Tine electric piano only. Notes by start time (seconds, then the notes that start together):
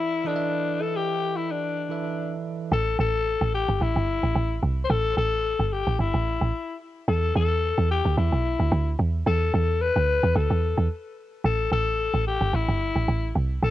Already playing: E3 E4 A4 B4 D5
0.24 E3 E4 A4 B4
0.29 D#5
0.36 E5
1.89 E3 E4 A4 B4 E5